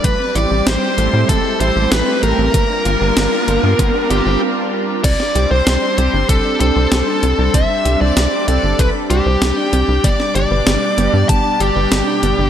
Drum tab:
CC |----------------|----------------|x---------------|----------------|
HH |x-x-x-x-x-x-x-x-|x-x-x-x-x-x-----|x-x-x-x-x-x-x-x-|x-x-x-x-x-x-x-x-|
SD |----o-------o---|----o-----------|-o--o-------o---|----o-------o---|
BD |o-------o-------|o-------o-------|o-------o-------|o-------o-------|

CC |----------------|
HH |x-x-x-x-x-x-x-x-|
SD |-o--o-------o---|
BD |o-------o-------|